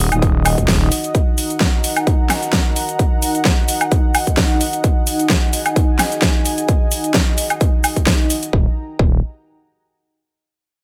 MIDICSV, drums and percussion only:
0, 0, Header, 1, 2, 480
1, 0, Start_track
1, 0, Key_signature, -6, "minor"
1, 0, Tempo, 461538
1, 1193, Time_signature, 4, 2, 24, 8
1, 11272, End_track
2, 0, Start_track
2, 0, Title_t, "Drums"
2, 124, Note_on_c, 9, 42, 51
2, 124, Note_on_c, 9, 76, 68
2, 124, Note_on_c, 9, 82, 45
2, 228, Note_off_c, 9, 42, 0
2, 228, Note_off_c, 9, 76, 0
2, 228, Note_off_c, 9, 82, 0
2, 233, Note_on_c, 9, 36, 125
2, 234, Note_on_c, 9, 42, 59
2, 234, Note_on_c, 9, 82, 30
2, 337, Note_off_c, 9, 36, 0
2, 338, Note_off_c, 9, 42, 0
2, 338, Note_off_c, 9, 82, 0
2, 473, Note_on_c, 9, 46, 108
2, 473, Note_on_c, 9, 76, 81
2, 473, Note_on_c, 9, 82, 74
2, 577, Note_off_c, 9, 46, 0
2, 577, Note_off_c, 9, 76, 0
2, 577, Note_off_c, 9, 82, 0
2, 603, Note_on_c, 9, 36, 63
2, 603, Note_on_c, 9, 42, 50
2, 603, Note_on_c, 9, 82, 44
2, 707, Note_off_c, 9, 36, 0
2, 707, Note_off_c, 9, 42, 0
2, 707, Note_off_c, 9, 82, 0
2, 707, Note_on_c, 9, 38, 116
2, 713, Note_on_c, 9, 36, 121
2, 713, Note_on_c, 9, 46, 63
2, 713, Note_on_c, 9, 82, 33
2, 811, Note_off_c, 9, 38, 0
2, 817, Note_off_c, 9, 36, 0
2, 817, Note_off_c, 9, 46, 0
2, 817, Note_off_c, 9, 82, 0
2, 953, Note_on_c, 9, 46, 110
2, 953, Note_on_c, 9, 82, 75
2, 1057, Note_off_c, 9, 46, 0
2, 1057, Note_off_c, 9, 82, 0
2, 1083, Note_on_c, 9, 42, 58
2, 1083, Note_on_c, 9, 82, 44
2, 1187, Note_off_c, 9, 42, 0
2, 1187, Note_off_c, 9, 82, 0
2, 1193, Note_on_c, 9, 36, 117
2, 1193, Note_on_c, 9, 42, 65
2, 1193, Note_on_c, 9, 82, 35
2, 1297, Note_off_c, 9, 36, 0
2, 1297, Note_off_c, 9, 42, 0
2, 1297, Note_off_c, 9, 82, 0
2, 1433, Note_on_c, 9, 46, 103
2, 1433, Note_on_c, 9, 82, 79
2, 1537, Note_off_c, 9, 46, 0
2, 1537, Note_off_c, 9, 82, 0
2, 1563, Note_on_c, 9, 42, 48
2, 1563, Note_on_c, 9, 82, 45
2, 1667, Note_off_c, 9, 42, 0
2, 1667, Note_off_c, 9, 82, 0
2, 1667, Note_on_c, 9, 38, 109
2, 1673, Note_on_c, 9, 36, 116
2, 1673, Note_on_c, 9, 42, 58
2, 1673, Note_on_c, 9, 82, 32
2, 1771, Note_off_c, 9, 38, 0
2, 1777, Note_off_c, 9, 36, 0
2, 1777, Note_off_c, 9, 42, 0
2, 1777, Note_off_c, 9, 82, 0
2, 1913, Note_on_c, 9, 46, 106
2, 1913, Note_on_c, 9, 82, 78
2, 2017, Note_off_c, 9, 46, 0
2, 2017, Note_off_c, 9, 82, 0
2, 2043, Note_on_c, 9, 42, 52
2, 2043, Note_on_c, 9, 76, 68
2, 2043, Note_on_c, 9, 82, 45
2, 2147, Note_off_c, 9, 42, 0
2, 2147, Note_off_c, 9, 76, 0
2, 2147, Note_off_c, 9, 82, 0
2, 2152, Note_on_c, 9, 36, 119
2, 2153, Note_on_c, 9, 42, 60
2, 2153, Note_on_c, 9, 82, 33
2, 2256, Note_off_c, 9, 36, 0
2, 2257, Note_off_c, 9, 42, 0
2, 2257, Note_off_c, 9, 82, 0
2, 2387, Note_on_c, 9, 38, 56
2, 2393, Note_on_c, 9, 46, 106
2, 2393, Note_on_c, 9, 76, 80
2, 2393, Note_on_c, 9, 82, 77
2, 2491, Note_off_c, 9, 38, 0
2, 2497, Note_off_c, 9, 46, 0
2, 2497, Note_off_c, 9, 76, 0
2, 2497, Note_off_c, 9, 82, 0
2, 2523, Note_on_c, 9, 42, 50
2, 2523, Note_on_c, 9, 82, 46
2, 2627, Note_off_c, 9, 42, 0
2, 2627, Note_off_c, 9, 82, 0
2, 2627, Note_on_c, 9, 38, 115
2, 2632, Note_on_c, 9, 36, 118
2, 2633, Note_on_c, 9, 42, 61
2, 2633, Note_on_c, 9, 82, 33
2, 2731, Note_off_c, 9, 38, 0
2, 2736, Note_off_c, 9, 36, 0
2, 2737, Note_off_c, 9, 42, 0
2, 2737, Note_off_c, 9, 82, 0
2, 2872, Note_on_c, 9, 46, 105
2, 2872, Note_on_c, 9, 82, 78
2, 2976, Note_off_c, 9, 46, 0
2, 2976, Note_off_c, 9, 82, 0
2, 3003, Note_on_c, 9, 42, 59
2, 3003, Note_on_c, 9, 82, 45
2, 3107, Note_off_c, 9, 42, 0
2, 3107, Note_off_c, 9, 82, 0
2, 3112, Note_on_c, 9, 36, 110
2, 3113, Note_on_c, 9, 42, 68
2, 3113, Note_on_c, 9, 82, 36
2, 3216, Note_off_c, 9, 36, 0
2, 3217, Note_off_c, 9, 42, 0
2, 3217, Note_off_c, 9, 82, 0
2, 3353, Note_on_c, 9, 46, 100
2, 3353, Note_on_c, 9, 82, 79
2, 3457, Note_off_c, 9, 46, 0
2, 3457, Note_off_c, 9, 82, 0
2, 3482, Note_on_c, 9, 42, 52
2, 3483, Note_on_c, 9, 82, 46
2, 3586, Note_off_c, 9, 42, 0
2, 3587, Note_off_c, 9, 82, 0
2, 3587, Note_on_c, 9, 38, 106
2, 3592, Note_on_c, 9, 36, 109
2, 3593, Note_on_c, 9, 42, 64
2, 3593, Note_on_c, 9, 82, 34
2, 3691, Note_off_c, 9, 38, 0
2, 3696, Note_off_c, 9, 36, 0
2, 3697, Note_off_c, 9, 42, 0
2, 3697, Note_off_c, 9, 82, 0
2, 3832, Note_on_c, 9, 46, 104
2, 3832, Note_on_c, 9, 82, 84
2, 3936, Note_off_c, 9, 46, 0
2, 3936, Note_off_c, 9, 82, 0
2, 3962, Note_on_c, 9, 42, 53
2, 3962, Note_on_c, 9, 76, 68
2, 3962, Note_on_c, 9, 82, 48
2, 4066, Note_off_c, 9, 42, 0
2, 4066, Note_off_c, 9, 76, 0
2, 4066, Note_off_c, 9, 82, 0
2, 4072, Note_on_c, 9, 42, 62
2, 4072, Note_on_c, 9, 82, 34
2, 4073, Note_on_c, 9, 36, 113
2, 4176, Note_off_c, 9, 42, 0
2, 4176, Note_off_c, 9, 82, 0
2, 4177, Note_off_c, 9, 36, 0
2, 4312, Note_on_c, 9, 46, 101
2, 4312, Note_on_c, 9, 76, 79
2, 4312, Note_on_c, 9, 82, 80
2, 4416, Note_off_c, 9, 46, 0
2, 4416, Note_off_c, 9, 76, 0
2, 4416, Note_off_c, 9, 82, 0
2, 4442, Note_on_c, 9, 42, 52
2, 4442, Note_on_c, 9, 82, 48
2, 4443, Note_on_c, 9, 36, 61
2, 4546, Note_off_c, 9, 42, 0
2, 4546, Note_off_c, 9, 82, 0
2, 4546, Note_on_c, 9, 38, 109
2, 4547, Note_off_c, 9, 36, 0
2, 4552, Note_on_c, 9, 46, 59
2, 4552, Note_on_c, 9, 82, 34
2, 4553, Note_on_c, 9, 36, 116
2, 4650, Note_off_c, 9, 38, 0
2, 4656, Note_off_c, 9, 46, 0
2, 4656, Note_off_c, 9, 82, 0
2, 4657, Note_off_c, 9, 36, 0
2, 4792, Note_on_c, 9, 46, 98
2, 4792, Note_on_c, 9, 82, 81
2, 4896, Note_off_c, 9, 46, 0
2, 4896, Note_off_c, 9, 82, 0
2, 4922, Note_on_c, 9, 42, 62
2, 4922, Note_on_c, 9, 82, 47
2, 5026, Note_off_c, 9, 42, 0
2, 5026, Note_off_c, 9, 82, 0
2, 5032, Note_on_c, 9, 42, 71
2, 5032, Note_on_c, 9, 82, 37
2, 5033, Note_on_c, 9, 36, 111
2, 5136, Note_off_c, 9, 42, 0
2, 5136, Note_off_c, 9, 82, 0
2, 5137, Note_off_c, 9, 36, 0
2, 5272, Note_on_c, 9, 46, 99
2, 5272, Note_on_c, 9, 82, 81
2, 5376, Note_off_c, 9, 46, 0
2, 5376, Note_off_c, 9, 82, 0
2, 5402, Note_on_c, 9, 42, 54
2, 5402, Note_on_c, 9, 82, 48
2, 5506, Note_off_c, 9, 42, 0
2, 5506, Note_off_c, 9, 82, 0
2, 5507, Note_on_c, 9, 38, 115
2, 5513, Note_on_c, 9, 36, 109
2, 5513, Note_on_c, 9, 42, 63
2, 5513, Note_on_c, 9, 82, 35
2, 5611, Note_off_c, 9, 38, 0
2, 5617, Note_off_c, 9, 36, 0
2, 5617, Note_off_c, 9, 42, 0
2, 5617, Note_off_c, 9, 82, 0
2, 5753, Note_on_c, 9, 46, 98
2, 5753, Note_on_c, 9, 82, 82
2, 5857, Note_off_c, 9, 46, 0
2, 5857, Note_off_c, 9, 82, 0
2, 5883, Note_on_c, 9, 42, 55
2, 5883, Note_on_c, 9, 76, 66
2, 5883, Note_on_c, 9, 82, 47
2, 5987, Note_off_c, 9, 42, 0
2, 5987, Note_off_c, 9, 76, 0
2, 5987, Note_off_c, 9, 82, 0
2, 5993, Note_on_c, 9, 36, 113
2, 5993, Note_on_c, 9, 42, 67
2, 5993, Note_on_c, 9, 82, 33
2, 6097, Note_off_c, 9, 36, 0
2, 6097, Note_off_c, 9, 42, 0
2, 6097, Note_off_c, 9, 82, 0
2, 6227, Note_on_c, 9, 38, 57
2, 6233, Note_on_c, 9, 46, 100
2, 6233, Note_on_c, 9, 76, 76
2, 6233, Note_on_c, 9, 82, 82
2, 6331, Note_off_c, 9, 38, 0
2, 6337, Note_off_c, 9, 46, 0
2, 6337, Note_off_c, 9, 76, 0
2, 6337, Note_off_c, 9, 82, 0
2, 6363, Note_on_c, 9, 42, 54
2, 6363, Note_on_c, 9, 82, 48
2, 6467, Note_off_c, 9, 42, 0
2, 6467, Note_off_c, 9, 82, 0
2, 6467, Note_on_c, 9, 38, 114
2, 6473, Note_on_c, 9, 36, 116
2, 6473, Note_on_c, 9, 42, 67
2, 6473, Note_on_c, 9, 82, 35
2, 6571, Note_off_c, 9, 38, 0
2, 6577, Note_off_c, 9, 36, 0
2, 6577, Note_off_c, 9, 42, 0
2, 6577, Note_off_c, 9, 82, 0
2, 6713, Note_on_c, 9, 46, 100
2, 6713, Note_on_c, 9, 82, 84
2, 6817, Note_off_c, 9, 46, 0
2, 6817, Note_off_c, 9, 82, 0
2, 6843, Note_on_c, 9, 42, 63
2, 6843, Note_on_c, 9, 82, 48
2, 6947, Note_off_c, 9, 42, 0
2, 6947, Note_off_c, 9, 82, 0
2, 6952, Note_on_c, 9, 42, 71
2, 6952, Note_on_c, 9, 82, 36
2, 6953, Note_on_c, 9, 36, 112
2, 7056, Note_off_c, 9, 42, 0
2, 7056, Note_off_c, 9, 82, 0
2, 7057, Note_off_c, 9, 36, 0
2, 7192, Note_on_c, 9, 46, 102
2, 7192, Note_on_c, 9, 82, 80
2, 7296, Note_off_c, 9, 46, 0
2, 7296, Note_off_c, 9, 82, 0
2, 7322, Note_on_c, 9, 42, 54
2, 7322, Note_on_c, 9, 82, 45
2, 7426, Note_off_c, 9, 42, 0
2, 7426, Note_off_c, 9, 82, 0
2, 7427, Note_on_c, 9, 38, 117
2, 7432, Note_on_c, 9, 42, 65
2, 7432, Note_on_c, 9, 82, 34
2, 7433, Note_on_c, 9, 36, 113
2, 7531, Note_off_c, 9, 38, 0
2, 7536, Note_off_c, 9, 42, 0
2, 7536, Note_off_c, 9, 82, 0
2, 7537, Note_off_c, 9, 36, 0
2, 7673, Note_on_c, 9, 46, 104
2, 7673, Note_on_c, 9, 82, 83
2, 7777, Note_off_c, 9, 46, 0
2, 7777, Note_off_c, 9, 82, 0
2, 7803, Note_on_c, 9, 42, 56
2, 7803, Note_on_c, 9, 76, 65
2, 7803, Note_on_c, 9, 82, 48
2, 7907, Note_off_c, 9, 42, 0
2, 7907, Note_off_c, 9, 76, 0
2, 7907, Note_off_c, 9, 82, 0
2, 7913, Note_on_c, 9, 36, 116
2, 7913, Note_on_c, 9, 42, 67
2, 7913, Note_on_c, 9, 82, 35
2, 8017, Note_off_c, 9, 36, 0
2, 8017, Note_off_c, 9, 42, 0
2, 8017, Note_off_c, 9, 82, 0
2, 8153, Note_on_c, 9, 46, 96
2, 8153, Note_on_c, 9, 76, 70
2, 8153, Note_on_c, 9, 82, 80
2, 8257, Note_off_c, 9, 46, 0
2, 8257, Note_off_c, 9, 76, 0
2, 8257, Note_off_c, 9, 82, 0
2, 8283, Note_on_c, 9, 36, 60
2, 8283, Note_on_c, 9, 42, 55
2, 8283, Note_on_c, 9, 82, 48
2, 8387, Note_off_c, 9, 36, 0
2, 8387, Note_off_c, 9, 42, 0
2, 8387, Note_off_c, 9, 82, 0
2, 8388, Note_on_c, 9, 38, 116
2, 8393, Note_on_c, 9, 36, 116
2, 8394, Note_on_c, 9, 46, 60
2, 8394, Note_on_c, 9, 82, 35
2, 8492, Note_off_c, 9, 38, 0
2, 8497, Note_off_c, 9, 36, 0
2, 8498, Note_off_c, 9, 46, 0
2, 8498, Note_off_c, 9, 82, 0
2, 8633, Note_on_c, 9, 46, 103
2, 8633, Note_on_c, 9, 82, 82
2, 8737, Note_off_c, 9, 46, 0
2, 8737, Note_off_c, 9, 82, 0
2, 8764, Note_on_c, 9, 42, 64
2, 8764, Note_on_c, 9, 82, 49
2, 8868, Note_off_c, 9, 42, 0
2, 8868, Note_off_c, 9, 82, 0
2, 8873, Note_on_c, 9, 36, 110
2, 8977, Note_off_c, 9, 36, 0
2, 9353, Note_on_c, 9, 36, 108
2, 9457, Note_off_c, 9, 36, 0
2, 11272, End_track
0, 0, End_of_file